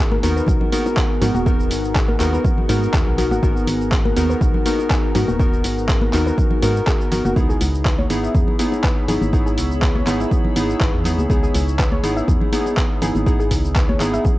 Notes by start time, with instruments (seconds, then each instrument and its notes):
Already playing: fm bass G#1, synth keys B3 D#4 F#4 A#4, ambient pad B3 G#4 F#5 A#5
0.12 synth pluck A#4, high conga
0.23 fm bass D#2, synth keys B3 D#4 F#4 A#4, open hi-hat, shaker
0.36 synth pluck B4, shaker
0.46 fm bass B1, kick, low conga, shaker
0.61 low conga
0.72 synth keys B3 D#4 F#4 A#4, open hi-hat, high conga, shaker
0.86 high bongo, shaker
0.97 synth pluck G#4, kick, clap, shaker
1.21 fm bass G#2, synth keys B3 D#4 F#4 A#4, synth pluck F#4, open hi-hat, low conga, shaker
1.35 fm bass D#1, synth pluck F#4, high bongo, high conga, shaker
1.46 synth keys B3 D#4 F#4 A#4, synth pluck F#4, kick, shaker
1.60 shaker
1.70 fm bass G#1, open hi-hat, high bongo, shaker
1.84 shaker
1.95 synth pluck G#4, kick, clap, shaker
2.08 synth pluck A#4, high conga
2.20 fm bass D#2, synth keys B3 D#4 F#4 A#4, clap, open hi-hat, shaker
2.33 synth pluck B4, high bongo, shaker
2.44 kick, low conga, shaker
2.58 low conga
2.69 fm bass G#2, synth keys B3 D#4 F#4 A#4, open hi-hat, high conga, shaker
2.83 shaker
2.94 fm bass D#2, synth pluck G#4, kick, clap, shaker
3.07 fm bass B1
3.18 synth keys B3 D#4 F#4 A#4, synth pluck F#4, open hi-hat, low conga, shaker
3.31 fm bass G#1, synth pluck F#4, high conga, shaker
3.43 fm bass G#1, synth keys B3 D#4 F#4 A#4, synth pluck F#4, kick, shaker
3.56 shaker
3.67 fm bass G#1, open hi-hat, high bongo, shaker
3.81 shaker
3.92 synth pluck G#4, kick, clap, shaker
4.05 synth pluck A#4, high conga
4.17 fm bass D#2, synth keys B3 D#4 F#4 A#4, open hi-hat, shaker
4.30 synth pluck B4, shaker
4.41 fm bass B1, kick, low conga, shaker
4.54 low conga
4.66 synth keys B3 D#4 F#4 A#4, open hi-hat, high conga, shaker
4.79 high bongo, shaker
4.90 synth pluck G#4, kick, clap, shaker
5.15 fm bass G#2, synth keys B3 D#4 F#4 A#4, synth pluck F#4, open hi-hat, low conga, shaker
5.28 fm bass D#1, synth pluck F#4, high bongo, high conga, shaker
5.39 synth keys B3 D#4 F#4 A#4, synth pluck F#4, kick, shaker
5.53 shaker
5.64 fm bass G#1, open hi-hat, high bongo, shaker
5.78 shaker
5.89 synth pluck G#4, kick, clap, shaker
6.01 synth pluck A#4, high conga
6.13 fm bass D#2, synth keys B3 D#4 F#4 A#4, clap, open hi-hat, shaker
6.26 synth pluck B4, high bongo, shaker
6.38 kick, low conga, shaker
6.51 low conga
6.62 fm bass G#2, synth keys B3 D#4 F#4 A#4, open hi-hat, high conga, shaker
6.76 shaker
6.87 synth pluck G#4, kick, clap, shaker
7.01 shaker
7.12 fm bass G#1, synth keys B3 D#4 F#4 A#4, synth pluck F#4, open hi-hat, low conga, shaker
7.25 fm bass F#1, synth pluck F#4, high conga, shaker
7.36 fm bass C#2, synth keys B3 D#4 E4 G#4, synth pluck G#4, ambient pad G#4 C#5 B5 E6, kick, shaker
7.49 synth pluck G#4, shaker
7.61 fm bass C#2, open hi-hat, high bongo, shaker
7.74 shaker
7.85 synth pluck B4, kick, clap, shaker
7.99 synth pluck C#5, high conga
8.10 fm bass G#1, synth keys B3 D#4 E4 G#4, open hi-hat, shaker
8.23 synth pluck E5, shaker
8.35 fm bass E2, kick, low conga, shaker
8.48 low conga
8.59 synth keys B3 D#4 E4 G#4, open hi-hat, high conga, shaker
8.72 high bongo, shaker
8.84 synth pluck B4, kick, clap, shaker
9.08 fm bass G#1, synth keys B3 D#4 E4 G#4, synth pluck G#4, open hi-hat, low conga, shaker
9.21 fm bass G#1, high bongo, high conga, shaker
9.33 synth keys B3 D#4 E4 G#4, synth pluck G#4, kick, shaker
9.46 synth pluck G#4, shaker
9.58 fm bass C#2, open hi-hat, high bongo, shaker
9.71 shaker
9.82 synth pluck B4, kick, clap, shaker
9.95 synth pluck C#5, high conga
10.07 fm bass G#1, synth keys B3 D#4 E4 G#4, clap, open hi-hat, shaker
10.20 synth pluck E5, high bongo, shaker
10.31 kick, low conga, shaker
10.45 low conga
10.56 fm bass G#1, synth keys B3 D#4 E4 G#4, open hi-hat, high conga, shaker
10.70 shaker
10.81 fm bass G#1, synth pluck B4, kick, clap, shaker
10.94 fm bass E2
11.04 synth keys B3 D#4 E4 G#4, synth pluck G#4, open hi-hat, low conga, shaker
11.18 fm bass C#2, high conga, shaker
11.30 fm bass C#2, synth keys B3 D#4 E4 G#4, synth pluck G#4, kick, shaker
11.43 synth pluck G#4, shaker
11.54 fm bass C#2, open hi-hat, high bongo, shaker
11.68 shaker
11.79 synth pluck B4, kick, clap, shaker
11.92 synth pluck C#5, high conga
12.03 fm bass G#1, synth keys B3 D#4 E4 G#4, open hi-hat, shaker
12.17 synth pluck E5, shaker
12.28 fm bass E2, kick, low conga, shaker
12.41 low conga
12.52 synth keys B3 D#4 E4 G#4, open hi-hat, high conga, shaker
12.66 high bongo, shaker
12.77 synth pluck B4, kick, clap, shaker
13.02 fm bass G#1, synth keys B3 D#4 E4 G#4, synth pluck G#4, open hi-hat, low conga, shaker
13.15 fm bass G#1, high bongo, high conga, shaker
13.26 synth keys B3 D#4 E4 G#4, synth pluck G#4, kick, shaker
13.40 synth pluck G#4, shaker
13.51 fm bass C#2, kick, open hi-hat, high bongo, shaker
13.65 shaker
13.76 synth pluck B4, kick, clap, shaker
13.89 synth pluck C#5, high conga
14.00 fm bass G#1, synth keys B3 D#4 E4 G#4, clap, open hi-hat, shaker
14.13 synth pluck E5, high bongo, shaker
14.24 kick, low conga, shaker